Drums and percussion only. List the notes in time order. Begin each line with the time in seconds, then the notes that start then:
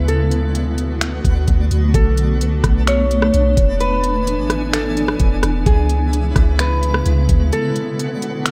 0.08 closed hi-hat
0.31 closed hi-hat
0.55 closed hi-hat
0.78 closed hi-hat
1.01 finger snap, closed hi-hat
1.25 kick, closed hi-hat
1.48 kick, closed hi-hat
1.71 closed hi-hat
1.94 kick, closed hi-hat
2.17 closed hi-hat
2.41 closed hi-hat
2.64 kick, cross-stick, closed hi-hat
2.87 finger snap, closed hi-hat
3.11 closed hi-hat
3.22 cross-stick
3.34 closed hi-hat
3.57 kick, closed hi-hat
3.80 closed hi-hat
4.04 closed hi-hat
4.27 closed hi-hat
4.50 cross-stick, closed hi-hat
4.73 finger snap, closed hi-hat
4.97 closed hi-hat
5.08 cross-stick
5.20 kick, closed hi-hat
5.43 cross-stick, closed hi-hat
5.66 kick, closed hi-hat
5.89 closed hi-hat
6.13 closed hi-hat
6.36 kick, cross-stick, closed hi-hat
6.59 finger snap, closed hi-hat
6.83 closed hi-hat
6.94 cross-stick
7.06 closed hi-hat
7.29 kick, closed hi-hat
7.53 closed hi-hat
7.76 closed hi-hat
7.99 closed hi-hat
8.22 closed hi-hat
8.46 finger snap, closed hi-hat